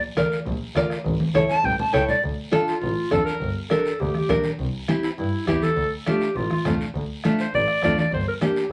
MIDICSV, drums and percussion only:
0, 0, Header, 1, 3, 480
1, 0, Start_track
1, 0, Key_signature, -1, "minor"
1, 0, Tempo, 294406
1, 1718, Time_signature, 4, 2, 24, 8
1, 14217, End_track
2, 0, Start_track
2, 0, Title_t, "Two-headed folk drums"
2, 273, Note_on_c, 9, 37, 84
2, 436, Note_off_c, 9, 37, 0
2, 753, Note_on_c, 9, 36, 86
2, 916, Note_off_c, 9, 36, 0
2, 1231, Note_on_c, 9, 37, 86
2, 1394, Note_off_c, 9, 37, 0
2, 1470, Note_on_c, 9, 37, 72
2, 1633, Note_off_c, 9, 37, 0
2, 1714, Note_on_c, 9, 36, 85
2, 1877, Note_off_c, 9, 36, 0
2, 2200, Note_on_c, 9, 37, 87
2, 2363, Note_off_c, 9, 37, 0
2, 2674, Note_on_c, 9, 36, 83
2, 2837, Note_off_c, 9, 36, 0
2, 3154, Note_on_c, 9, 36, 74
2, 3162, Note_on_c, 9, 37, 88
2, 3317, Note_off_c, 9, 36, 0
2, 3325, Note_off_c, 9, 37, 0
2, 3634, Note_on_c, 9, 36, 83
2, 3798, Note_off_c, 9, 36, 0
2, 4120, Note_on_c, 9, 37, 82
2, 4283, Note_off_c, 9, 37, 0
2, 5075, Note_on_c, 9, 36, 87
2, 5075, Note_on_c, 9, 37, 85
2, 5238, Note_off_c, 9, 36, 0
2, 5238, Note_off_c, 9, 37, 0
2, 5556, Note_on_c, 9, 36, 81
2, 5719, Note_off_c, 9, 36, 0
2, 6030, Note_on_c, 9, 37, 80
2, 6193, Note_off_c, 9, 37, 0
2, 6759, Note_on_c, 9, 37, 69
2, 6922, Note_off_c, 9, 37, 0
2, 6998, Note_on_c, 9, 36, 89
2, 7005, Note_on_c, 9, 37, 88
2, 7162, Note_off_c, 9, 36, 0
2, 7168, Note_off_c, 9, 37, 0
2, 7478, Note_on_c, 9, 36, 88
2, 7641, Note_off_c, 9, 36, 0
2, 7961, Note_on_c, 9, 37, 83
2, 8124, Note_off_c, 9, 37, 0
2, 8921, Note_on_c, 9, 36, 85
2, 8923, Note_on_c, 9, 37, 88
2, 9084, Note_off_c, 9, 36, 0
2, 9086, Note_off_c, 9, 37, 0
2, 9403, Note_on_c, 9, 36, 78
2, 9566, Note_off_c, 9, 36, 0
2, 9888, Note_on_c, 9, 37, 83
2, 10051, Note_off_c, 9, 37, 0
2, 10607, Note_on_c, 9, 37, 73
2, 10770, Note_off_c, 9, 37, 0
2, 10845, Note_on_c, 9, 37, 91
2, 10846, Note_on_c, 9, 36, 90
2, 11008, Note_off_c, 9, 37, 0
2, 11009, Note_off_c, 9, 36, 0
2, 11327, Note_on_c, 9, 36, 82
2, 11490, Note_off_c, 9, 36, 0
2, 11799, Note_on_c, 9, 37, 88
2, 11962, Note_off_c, 9, 37, 0
2, 12519, Note_on_c, 9, 37, 69
2, 12682, Note_off_c, 9, 37, 0
2, 12756, Note_on_c, 9, 37, 88
2, 12760, Note_on_c, 9, 36, 91
2, 12919, Note_off_c, 9, 37, 0
2, 12923, Note_off_c, 9, 36, 0
2, 13237, Note_on_c, 9, 36, 81
2, 13400, Note_off_c, 9, 36, 0
2, 13718, Note_on_c, 9, 37, 87
2, 13881, Note_off_c, 9, 37, 0
2, 14217, End_track
3, 0, Start_track
3, 0, Title_t, "Drums"
3, 283, Note_on_c, 9, 63, 90
3, 290, Note_on_c, 9, 73, 70
3, 446, Note_off_c, 9, 63, 0
3, 453, Note_off_c, 9, 73, 0
3, 522, Note_on_c, 9, 73, 72
3, 685, Note_off_c, 9, 73, 0
3, 755, Note_on_c, 9, 74, 71
3, 760, Note_on_c, 9, 64, 83
3, 918, Note_off_c, 9, 74, 0
3, 923, Note_off_c, 9, 64, 0
3, 1249, Note_on_c, 9, 63, 80
3, 1255, Note_on_c, 9, 73, 73
3, 1412, Note_off_c, 9, 63, 0
3, 1418, Note_off_c, 9, 73, 0
3, 1489, Note_on_c, 9, 73, 71
3, 1652, Note_off_c, 9, 73, 0
3, 1720, Note_on_c, 9, 63, 80
3, 1731, Note_on_c, 9, 74, 73
3, 1883, Note_off_c, 9, 63, 0
3, 1894, Note_off_c, 9, 74, 0
3, 1956, Note_on_c, 9, 63, 106
3, 2119, Note_off_c, 9, 63, 0
3, 2197, Note_on_c, 9, 73, 70
3, 2199, Note_on_c, 9, 63, 106
3, 2360, Note_off_c, 9, 73, 0
3, 2362, Note_off_c, 9, 63, 0
3, 2439, Note_on_c, 9, 73, 74
3, 2448, Note_on_c, 9, 63, 83
3, 2602, Note_off_c, 9, 73, 0
3, 2611, Note_off_c, 9, 63, 0
3, 2675, Note_on_c, 9, 64, 102
3, 2677, Note_on_c, 9, 74, 70
3, 2838, Note_off_c, 9, 64, 0
3, 2840, Note_off_c, 9, 74, 0
3, 2923, Note_on_c, 9, 64, 77
3, 3086, Note_off_c, 9, 64, 0
3, 3170, Note_on_c, 9, 73, 75
3, 3333, Note_off_c, 9, 73, 0
3, 3399, Note_on_c, 9, 64, 92
3, 3399, Note_on_c, 9, 73, 69
3, 3562, Note_off_c, 9, 64, 0
3, 3562, Note_off_c, 9, 73, 0
3, 3642, Note_on_c, 9, 74, 68
3, 3643, Note_on_c, 9, 63, 35
3, 3805, Note_off_c, 9, 74, 0
3, 3806, Note_off_c, 9, 63, 0
3, 4118, Note_on_c, 9, 73, 71
3, 4122, Note_on_c, 9, 63, 101
3, 4281, Note_off_c, 9, 73, 0
3, 4285, Note_off_c, 9, 63, 0
3, 4370, Note_on_c, 9, 73, 69
3, 4533, Note_off_c, 9, 73, 0
3, 4590, Note_on_c, 9, 74, 73
3, 4612, Note_on_c, 9, 63, 36
3, 4753, Note_off_c, 9, 74, 0
3, 4775, Note_off_c, 9, 63, 0
3, 5085, Note_on_c, 9, 73, 70
3, 5087, Note_on_c, 9, 63, 81
3, 5248, Note_off_c, 9, 73, 0
3, 5250, Note_off_c, 9, 63, 0
3, 5331, Note_on_c, 9, 73, 70
3, 5494, Note_off_c, 9, 73, 0
3, 5568, Note_on_c, 9, 74, 73
3, 5732, Note_off_c, 9, 74, 0
3, 6053, Note_on_c, 9, 63, 93
3, 6055, Note_on_c, 9, 73, 68
3, 6216, Note_off_c, 9, 63, 0
3, 6218, Note_off_c, 9, 73, 0
3, 6287, Note_on_c, 9, 73, 73
3, 6451, Note_off_c, 9, 73, 0
3, 6520, Note_on_c, 9, 74, 69
3, 6530, Note_on_c, 9, 63, 37
3, 6683, Note_off_c, 9, 74, 0
3, 6693, Note_off_c, 9, 63, 0
3, 6761, Note_on_c, 9, 63, 72
3, 6924, Note_off_c, 9, 63, 0
3, 6997, Note_on_c, 9, 73, 76
3, 7003, Note_on_c, 9, 63, 84
3, 7003, Note_on_c, 9, 64, 82
3, 7160, Note_off_c, 9, 73, 0
3, 7166, Note_off_c, 9, 63, 0
3, 7166, Note_off_c, 9, 64, 0
3, 7233, Note_on_c, 9, 73, 72
3, 7240, Note_on_c, 9, 63, 67
3, 7396, Note_off_c, 9, 73, 0
3, 7403, Note_off_c, 9, 63, 0
3, 7481, Note_on_c, 9, 63, 35
3, 7484, Note_on_c, 9, 74, 68
3, 7644, Note_off_c, 9, 63, 0
3, 7647, Note_off_c, 9, 74, 0
3, 7960, Note_on_c, 9, 73, 69
3, 7968, Note_on_c, 9, 63, 101
3, 8123, Note_off_c, 9, 73, 0
3, 8131, Note_off_c, 9, 63, 0
3, 8206, Note_on_c, 9, 73, 74
3, 8370, Note_off_c, 9, 73, 0
3, 8447, Note_on_c, 9, 74, 74
3, 8451, Note_on_c, 9, 63, 36
3, 8610, Note_off_c, 9, 74, 0
3, 8614, Note_off_c, 9, 63, 0
3, 8928, Note_on_c, 9, 73, 72
3, 8931, Note_on_c, 9, 63, 88
3, 9091, Note_off_c, 9, 73, 0
3, 9094, Note_off_c, 9, 63, 0
3, 9169, Note_on_c, 9, 73, 67
3, 9174, Note_on_c, 9, 63, 70
3, 9332, Note_off_c, 9, 73, 0
3, 9337, Note_off_c, 9, 63, 0
3, 9401, Note_on_c, 9, 74, 69
3, 9423, Note_on_c, 9, 63, 37
3, 9564, Note_off_c, 9, 74, 0
3, 9586, Note_off_c, 9, 63, 0
3, 9885, Note_on_c, 9, 73, 70
3, 9904, Note_on_c, 9, 63, 90
3, 10048, Note_off_c, 9, 73, 0
3, 10067, Note_off_c, 9, 63, 0
3, 10127, Note_on_c, 9, 73, 73
3, 10290, Note_off_c, 9, 73, 0
3, 10364, Note_on_c, 9, 74, 75
3, 10380, Note_on_c, 9, 63, 35
3, 10528, Note_off_c, 9, 74, 0
3, 10543, Note_off_c, 9, 63, 0
3, 10617, Note_on_c, 9, 63, 76
3, 10780, Note_off_c, 9, 63, 0
3, 10857, Note_on_c, 9, 73, 70
3, 10863, Note_on_c, 9, 63, 82
3, 10863, Note_on_c, 9, 64, 80
3, 11020, Note_off_c, 9, 73, 0
3, 11026, Note_off_c, 9, 63, 0
3, 11026, Note_off_c, 9, 64, 0
3, 11100, Note_on_c, 9, 73, 69
3, 11263, Note_off_c, 9, 73, 0
3, 11338, Note_on_c, 9, 74, 67
3, 11347, Note_on_c, 9, 63, 33
3, 11501, Note_off_c, 9, 74, 0
3, 11510, Note_off_c, 9, 63, 0
3, 11809, Note_on_c, 9, 73, 67
3, 11820, Note_on_c, 9, 63, 94
3, 11972, Note_off_c, 9, 73, 0
3, 11983, Note_off_c, 9, 63, 0
3, 12044, Note_on_c, 9, 73, 74
3, 12207, Note_off_c, 9, 73, 0
3, 12294, Note_on_c, 9, 74, 71
3, 12303, Note_on_c, 9, 63, 36
3, 12457, Note_off_c, 9, 74, 0
3, 12466, Note_off_c, 9, 63, 0
3, 12774, Note_on_c, 9, 63, 84
3, 12775, Note_on_c, 9, 73, 75
3, 12937, Note_off_c, 9, 63, 0
3, 12938, Note_off_c, 9, 73, 0
3, 13009, Note_on_c, 9, 73, 69
3, 13018, Note_on_c, 9, 63, 74
3, 13173, Note_off_c, 9, 73, 0
3, 13181, Note_off_c, 9, 63, 0
3, 13245, Note_on_c, 9, 74, 70
3, 13259, Note_on_c, 9, 63, 35
3, 13408, Note_off_c, 9, 74, 0
3, 13422, Note_off_c, 9, 63, 0
3, 13718, Note_on_c, 9, 73, 70
3, 13724, Note_on_c, 9, 63, 99
3, 13881, Note_off_c, 9, 73, 0
3, 13887, Note_off_c, 9, 63, 0
3, 13961, Note_on_c, 9, 73, 72
3, 14124, Note_off_c, 9, 73, 0
3, 14217, End_track
0, 0, End_of_file